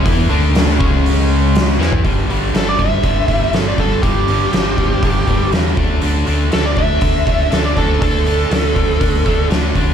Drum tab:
HH |o---o---o---o---|o-o-o-o-o-o-o-o-|o-o-o-o-o-o-o-o-|o-o-o-o-o-o-o-o-|
SD |----o-------o-o-|----o-------o---|----o-------o---|----o-------o---|
FT |---------------o|----------------|----------------|----------------|
BD |o-----o---------|o-----o-o-o---o-|o-----o-o-o---o-|------o-o-o---o-|

HH |o-o-o-o-o-o-o-o-|
SD |----o-------o---|
FT |----------------|
BD |o-----o-o-o---o-|